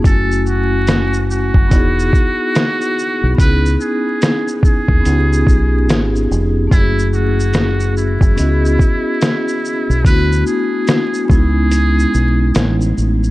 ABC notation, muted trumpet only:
X:1
M:4/4
L:1/16
Q:"Swing 16ths" 1/4=72
K:C#m
V:1 name="Muted trumpet"
A2 F4 F8- F2 | B2 G4 G6- G z3 | E2 F4 E8- E2 | B2 G4 G6- G z3 |]